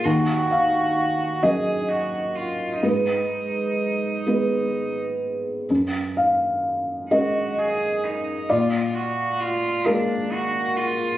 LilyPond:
<<
  \new Staff \with { instrumentName = "Cello" } { \time 6/8 \key gis \dorian \tempo 4. = 43 fis'4. gis'8 fis'8 eis'8 | dis'2~ dis'16 r8. | r4. fis'8 gis'8 dis'8 | eis'8 fis'8 eis'8 d'8 fis'8 eis'8 | }
  \new Staff \with { instrumentName = "Felt piano" } { \time 6/8 \key gis \dorian r8 eis''4 dis''4. | b'4. r4. | r8 eis''4 dis''4. | d''4. ais'4. | }
  \new Staff \with { instrumentName = "Felt piano" } { \clef bass \time 6/8 \key gis \dorian dis,4. <fis cis' ais'>4. | gis,4. <gis b b'>4. | fis,4. <gis cis' ais'>4. | ais,4. <gis ais>4. | }
>>